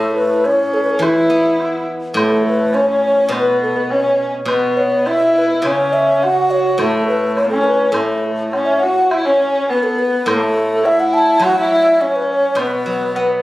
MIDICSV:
0, 0, Header, 1, 5, 480
1, 0, Start_track
1, 0, Tempo, 578592
1, 848, Time_signature, 2, 2, 24, 8
1, 11133, End_track
2, 0, Start_track
2, 0, Title_t, "Xiao"
2, 0, Program_c, 0, 77
2, 0, Note_on_c, 0, 69, 82
2, 99, Note_off_c, 0, 69, 0
2, 127, Note_on_c, 0, 71, 78
2, 377, Note_on_c, 0, 73, 90
2, 389, Note_off_c, 0, 71, 0
2, 610, Note_on_c, 0, 69, 86
2, 623, Note_off_c, 0, 73, 0
2, 681, Note_off_c, 0, 69, 0
2, 686, Note_on_c, 0, 71, 57
2, 744, Note_on_c, 0, 69, 74
2, 757, Note_off_c, 0, 71, 0
2, 860, Note_on_c, 0, 64, 84
2, 873, Note_off_c, 0, 69, 0
2, 1568, Note_off_c, 0, 64, 0
2, 1800, Note_on_c, 0, 69, 80
2, 2018, Note_off_c, 0, 69, 0
2, 2047, Note_on_c, 0, 71, 78
2, 2276, Note_on_c, 0, 73, 89
2, 2289, Note_off_c, 0, 71, 0
2, 2394, Note_off_c, 0, 73, 0
2, 2403, Note_on_c, 0, 73, 84
2, 2755, Note_on_c, 0, 71, 89
2, 2767, Note_off_c, 0, 73, 0
2, 2992, Note_off_c, 0, 71, 0
2, 3005, Note_on_c, 0, 69, 75
2, 3123, Note_on_c, 0, 71, 67
2, 3135, Note_off_c, 0, 69, 0
2, 3236, Note_off_c, 0, 71, 0
2, 3241, Note_on_c, 0, 73, 80
2, 3573, Note_off_c, 0, 73, 0
2, 3709, Note_on_c, 0, 71, 81
2, 3955, Note_on_c, 0, 73, 78
2, 3967, Note_off_c, 0, 71, 0
2, 4208, Note_on_c, 0, 76, 93
2, 4220, Note_off_c, 0, 73, 0
2, 4446, Note_off_c, 0, 76, 0
2, 4454, Note_on_c, 0, 71, 75
2, 4561, Note_off_c, 0, 71, 0
2, 4565, Note_on_c, 0, 71, 67
2, 4677, Note_off_c, 0, 71, 0
2, 4683, Note_on_c, 0, 73, 96
2, 4920, Note_on_c, 0, 76, 83
2, 4932, Note_off_c, 0, 73, 0
2, 5164, Note_on_c, 0, 78, 95
2, 5176, Note_off_c, 0, 76, 0
2, 5398, Note_on_c, 0, 73, 86
2, 5410, Note_off_c, 0, 78, 0
2, 5505, Note_off_c, 0, 73, 0
2, 5510, Note_on_c, 0, 73, 77
2, 5634, Note_on_c, 0, 69, 92
2, 5646, Note_off_c, 0, 73, 0
2, 5864, Note_off_c, 0, 69, 0
2, 5869, Note_on_c, 0, 71, 85
2, 6090, Note_off_c, 0, 71, 0
2, 6106, Note_on_c, 0, 73, 90
2, 6210, Note_off_c, 0, 73, 0
2, 6215, Note_on_c, 0, 69, 77
2, 6337, Note_on_c, 0, 71, 82
2, 6350, Note_off_c, 0, 69, 0
2, 6567, Note_on_c, 0, 69, 75
2, 6580, Note_off_c, 0, 71, 0
2, 6836, Note_off_c, 0, 69, 0
2, 7055, Note_on_c, 0, 73, 74
2, 7180, Note_on_c, 0, 76, 71
2, 7193, Note_off_c, 0, 73, 0
2, 7297, Note_on_c, 0, 78, 82
2, 7309, Note_off_c, 0, 76, 0
2, 7556, Note_on_c, 0, 76, 81
2, 7569, Note_off_c, 0, 78, 0
2, 7663, Note_off_c, 0, 76, 0
2, 7668, Note_on_c, 0, 73, 99
2, 8012, Note_off_c, 0, 73, 0
2, 8042, Note_on_c, 0, 71, 81
2, 8156, Note_on_c, 0, 69, 79
2, 8168, Note_off_c, 0, 71, 0
2, 8286, Note_on_c, 0, 71, 86
2, 8299, Note_off_c, 0, 69, 0
2, 8519, Note_on_c, 0, 69, 100
2, 8532, Note_off_c, 0, 71, 0
2, 9004, Note_on_c, 0, 76, 102
2, 9017, Note_off_c, 0, 69, 0
2, 9124, Note_on_c, 0, 78, 89
2, 9137, Note_off_c, 0, 76, 0
2, 9239, Note_on_c, 0, 81, 102
2, 9251, Note_off_c, 0, 78, 0
2, 9475, Note_off_c, 0, 81, 0
2, 9492, Note_on_c, 0, 78, 109
2, 9594, Note_off_c, 0, 78, 0
2, 9611, Note_on_c, 0, 76, 107
2, 9966, Note_on_c, 0, 73, 98
2, 9979, Note_off_c, 0, 76, 0
2, 10087, Note_on_c, 0, 71, 89
2, 10099, Note_off_c, 0, 73, 0
2, 10197, Note_off_c, 0, 71, 0
2, 10208, Note_on_c, 0, 73, 102
2, 10452, Note_on_c, 0, 71, 102
2, 10464, Note_off_c, 0, 73, 0
2, 11133, Note_off_c, 0, 71, 0
2, 11133, End_track
3, 0, Start_track
3, 0, Title_t, "Horsehead fiddle"
3, 0, Program_c, 1, 110
3, 0, Note_on_c, 1, 57, 61
3, 372, Note_on_c, 1, 61, 74
3, 384, Note_off_c, 1, 57, 0
3, 844, Note_on_c, 1, 64, 70
3, 856, Note_off_c, 1, 61, 0
3, 1560, Note_off_c, 1, 64, 0
3, 1781, Note_on_c, 1, 57, 69
3, 2261, Note_on_c, 1, 61, 70
3, 2274, Note_off_c, 1, 57, 0
3, 2386, Note_off_c, 1, 61, 0
3, 2398, Note_on_c, 1, 61, 70
3, 2740, Note_on_c, 1, 59, 74
3, 2753, Note_off_c, 1, 61, 0
3, 3238, Note_on_c, 1, 61, 65
3, 3250, Note_off_c, 1, 59, 0
3, 3596, Note_off_c, 1, 61, 0
3, 3714, Note_on_c, 1, 59, 67
3, 4200, Note_on_c, 1, 64, 79
3, 4213, Note_off_c, 1, 59, 0
3, 4698, Note_on_c, 1, 61, 76
3, 4710, Note_off_c, 1, 64, 0
3, 5175, Note_on_c, 1, 66, 89
3, 5188, Note_off_c, 1, 61, 0
3, 5651, Note_on_c, 1, 57, 76
3, 5663, Note_off_c, 1, 66, 0
3, 6127, Note_on_c, 1, 61, 85
3, 6140, Note_off_c, 1, 57, 0
3, 6601, Note_on_c, 1, 57, 68
3, 6613, Note_off_c, 1, 61, 0
3, 7075, Note_off_c, 1, 57, 0
3, 7085, Note_on_c, 1, 61, 76
3, 7324, Note_on_c, 1, 66, 73
3, 7336, Note_off_c, 1, 61, 0
3, 7562, Note_on_c, 1, 64, 83
3, 7574, Note_off_c, 1, 66, 0
3, 7674, Note_on_c, 1, 61, 86
3, 7687, Note_off_c, 1, 64, 0
3, 8044, Note_on_c, 1, 59, 75
3, 8057, Note_off_c, 1, 61, 0
3, 8512, Note_off_c, 1, 59, 0
3, 8517, Note_on_c, 1, 57, 72
3, 8995, Note_on_c, 1, 64, 87
3, 9007, Note_off_c, 1, 57, 0
3, 9486, Note_on_c, 1, 66, 89
3, 9498, Note_off_c, 1, 64, 0
3, 9598, Note_off_c, 1, 66, 0
3, 9608, Note_on_c, 1, 64, 86
3, 9955, Note_on_c, 1, 61, 81
3, 9968, Note_off_c, 1, 64, 0
3, 10440, Note_on_c, 1, 59, 69
3, 10452, Note_off_c, 1, 61, 0
3, 11133, Note_off_c, 1, 59, 0
3, 11133, End_track
4, 0, Start_track
4, 0, Title_t, "Guzheng"
4, 0, Program_c, 2, 107
4, 0, Note_on_c, 2, 45, 54
4, 821, Note_on_c, 2, 52, 52
4, 1077, Note_on_c, 2, 59, 42
4, 1312, Note_off_c, 2, 45, 0
4, 1777, Note_on_c, 2, 45, 59
4, 2029, Note_off_c, 2, 59, 0
4, 2258, Note_off_c, 2, 52, 0
4, 2726, Note_on_c, 2, 47, 61
4, 2740, Note_off_c, 2, 45, 0
4, 3685, Note_off_c, 2, 47, 0
4, 3695, Note_on_c, 2, 47, 52
4, 4661, Note_on_c, 2, 49, 55
4, 4675, Note_off_c, 2, 47, 0
4, 5623, Note_on_c, 2, 45, 60
4, 5627, Note_off_c, 2, 49, 0
4, 6560, Note_off_c, 2, 45, 0
4, 6570, Note_on_c, 2, 45, 55
4, 8036, Note_off_c, 2, 45, 0
4, 8511, Note_on_c, 2, 45, 63
4, 9453, Note_on_c, 2, 54, 62
4, 9941, Note_off_c, 2, 45, 0
4, 10412, Note_on_c, 2, 47, 59
4, 10657, Note_off_c, 2, 54, 0
4, 10667, Note_on_c, 2, 54, 45
4, 10918, Note_on_c, 2, 59, 49
4, 11133, Note_off_c, 2, 47, 0
4, 11133, Note_off_c, 2, 54, 0
4, 11133, Note_off_c, 2, 59, 0
4, 11133, End_track
5, 0, Start_track
5, 0, Title_t, "Drums"
5, 367, Note_on_c, 9, 76, 39
5, 449, Note_off_c, 9, 76, 0
5, 851, Note_on_c, 9, 76, 58
5, 934, Note_off_c, 9, 76, 0
5, 1326, Note_on_c, 9, 76, 41
5, 1409, Note_off_c, 9, 76, 0
5, 1801, Note_on_c, 9, 76, 69
5, 1884, Note_off_c, 9, 76, 0
5, 2280, Note_on_c, 9, 76, 43
5, 2363, Note_off_c, 9, 76, 0
5, 2757, Note_on_c, 9, 76, 50
5, 2840, Note_off_c, 9, 76, 0
5, 3238, Note_on_c, 9, 77, 40
5, 3321, Note_off_c, 9, 77, 0
5, 3718, Note_on_c, 9, 76, 54
5, 3801, Note_off_c, 9, 76, 0
5, 4198, Note_on_c, 9, 76, 42
5, 4281, Note_off_c, 9, 76, 0
5, 4687, Note_on_c, 9, 76, 51
5, 4770, Note_off_c, 9, 76, 0
5, 5171, Note_on_c, 9, 76, 40
5, 5254, Note_off_c, 9, 76, 0
5, 5636, Note_on_c, 9, 76, 57
5, 5719, Note_off_c, 9, 76, 0
5, 6113, Note_on_c, 9, 76, 45
5, 6196, Note_off_c, 9, 76, 0
5, 6589, Note_on_c, 9, 76, 66
5, 6672, Note_off_c, 9, 76, 0
5, 7077, Note_on_c, 9, 76, 43
5, 7077, Note_on_c, 9, 77, 43
5, 7160, Note_off_c, 9, 76, 0
5, 7160, Note_off_c, 9, 77, 0
5, 7560, Note_on_c, 9, 76, 58
5, 7643, Note_off_c, 9, 76, 0
5, 8042, Note_on_c, 9, 77, 44
5, 8125, Note_off_c, 9, 77, 0
5, 8526, Note_on_c, 9, 76, 74
5, 8609, Note_off_c, 9, 76, 0
5, 9002, Note_on_c, 9, 77, 48
5, 9085, Note_off_c, 9, 77, 0
5, 9474, Note_on_c, 9, 76, 65
5, 9557, Note_off_c, 9, 76, 0
5, 9949, Note_on_c, 9, 77, 43
5, 10032, Note_off_c, 9, 77, 0
5, 10425, Note_on_c, 9, 76, 75
5, 10508, Note_off_c, 9, 76, 0
5, 10912, Note_on_c, 9, 77, 50
5, 10995, Note_off_c, 9, 77, 0
5, 11133, End_track
0, 0, End_of_file